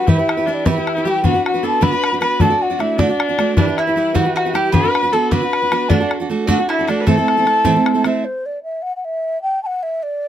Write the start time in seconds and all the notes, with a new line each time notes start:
Already playing: F#5
0.06 E3 G3 E4 G4 B4 E5, bodhran
0.18 E4 G4 B4
0.29 bodhran
0.37 E4 G4 B4
0.46 G3 D4 E4 G4 B4 E5
0.54 D5
0.65 E3 G3 E4 G4 B4 E5, bodhran
0.76 E4 G4 B4
0.87 bodhran
0.97 E4 G4 B4
1.05 G3 E4 G4 B4 G5
1.24 D3 B3 D4 F#4 B4 F#5, bodhran
1.34 D4 F#4 B4
1.45 F#4 F#5, bodhran
1.54 D4 F#4 B4
1.63 B3 D4 F#4 A4 B4 A5
1.81 D3 B3 D4 F#4 B4 B5, bodhran
1.92 D4 F#4 B4
2.04 bodhran
2.12 D4 F#4 B4
2.21 B3 D4 F#4 B4 B5, bodhran
2.40 D3 A3 D4 F#4 A4 D5 A5, bodhran
2.50 D4 F#4 D5
2.61 F#4 F#5
2.70 D4 F#4 D5
2.79 A3 D4 E4 F#4 D5 E5, bodhran
2.97 D3 A3 D4 F#4 D5, bodhran
3.09 D4 F#4 D5
3.20 bodhran
3.29 D4 F#4 D5
3.38 A3 D4 F#4 D5, bodhran
3.56 E3 G3 D4 E4 G4 B4 D5, bodhran
3.67 E4 G4 B4
3.76 E4 E5, bodhran
3.87 E4 G4 B4
3.96 G3 E4 G4 B4
4.14 E3 G3 E4 F#4 G4 B4 F#5, bodhran
4.25 E4 G4 B4
4.36 F#4 F#5, bodhran
4.45 E4 G4 B4
4.54 G3 E4 G4 B4 G5, bodhran
4.72 D3 B3 D4 F#4 B4 B5, bodhran
4.83 D4 F#4 B4
4.95 bodhran
5.03 D4 F#4 B4
5.12 B3 D4 F#4 A4 B4 A5
5.31 D3 B3 D4 F#4 B4 B5, bodhran
5.42 D4 F#4 B4
5.53 bodhran
5.62 D4 F#4 B4
5.71 B3 D4 F#4 B4, bodhran
5.89 D3 A3 D4 F#4 A4 D5, bodhran
6.00 D4 F#4 A4
6.11 bodhran
6.20 D4 F#4 A4
6.29 A3 D4 F#4 A4
6.47 D3 A3 D4 F#4 A4 F#5, bodhran
6.58 D4 F#4 A4
6.69 E4 E5, bodhran
6.79 D4 F#4 A4
6.88 A3 D4 F#4 A4 D5, bodhran
7.01 B4
7.06 A2 E3 A3 C4 E4 A4 A5, bodhran
7.17 A3 C4 E4 A4
7.28 bodhran
7.37 A3 C4 E4 A4
7.45 A3 C4 E4 A4, bodhran
7.64 A2 E3 A3 C4 E4 A4, bodhran
7.75 A3 C4 E4 A4
7.86 bodhran
7.94 A3 C4 E4 A4
8.04 A3 C4 E4 A4 E5, bodhran
8.25 C5
8.46 D5
8.63 E5
8.82 F#5
8.96 F#5
9.05 E5
9.42 G5
9.63 F#5 A5
9.83 E5
10.03 D5